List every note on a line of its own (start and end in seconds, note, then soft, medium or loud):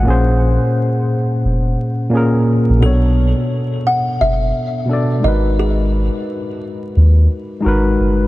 0.00 0.99 A#2 medium
0.00 0.26 F#5 medium
0.05 0.58 A#1 medium
0.05 1.00 A#3 medium
0.05 1.01 C#4 medium
0.05 1.02 G#4 medium
0.10 1.03 C5 loud
1.45 1.76 F1 loud
2.10 2.60 A#2 medium
2.10 2.61 A#3 medium
2.10 2.62 C#4 medium
2.15 2.63 G#4 medium
2.15 2.64 A#4 medium
2.70 2.81 A#1 medium
2.79 3.75 B2 medium
2.79 3.76 B3 medium
2.79 3.77 D4 medium
2.79 3.89 A4 loud
2.83 3.34 B1 loud
2.83 3.78 A4 medium
2.83 3.79 C#5 medium
3.87 4.02 F#5 medium
4.21 4.52 F#1 loud
4.21 5.27 E5 loud
4.86 5.21 B2 medium
4.86 5.22 B3 medium
4.86 5.23 D4 medium
4.91 5.24 A4 medium
4.91 5.25 D5 medium
5.20 6.09 G#1 loud
5.20 6.33 G#3 medium
5.20 6.34 D#4 medium
5.20 6.35 F#4 medium
5.24 6.36 A#4 medium
5.24 6.37 B4 medium
5.24 5.59 D#5 loud
5.59 6.58 G#4 medium
6.97 7.28 D#2 loud
7.61 8.11 G#3 medium
7.61 8.12 D#4 medium
7.61 8.13 F#4 medium
7.66 7.97 G#1 loud
7.66 8.14 A#4 medium
7.66 8.15 B4 medium
8.00 8.28 G1 medium